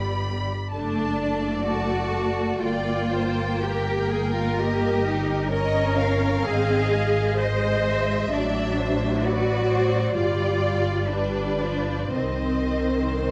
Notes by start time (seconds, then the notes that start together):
Already playing: G1 G3 B3 D5 B5
0.73 F#1 A3 D4 D5 A5
1.23 A3
1.68 F#4 A5
2.63 G1 A#3 F4 D5 G5
3.14 C5
3.62 G4 A#4
4.11 G#4
4.35 F4
4.59 A#3 G4 D#5
5.07 D#4
5.51 C#4 A#4 C#5 D#5
5.98 F5
6.44 G#1 C4 G#4 D#5
6.92 G#3
7.39 C5 D#5
7.87 E5
8.33 A1 F#3 D4 D5
8.80 C5
9.24 F#4 B4 D5
9.69 C5
10.15 G1 G3 F4 D5
11.11 G3 D4 B4 D5
11.62 F3
12.12 C2 D#3 C4 C5 D#5
13.22 D#5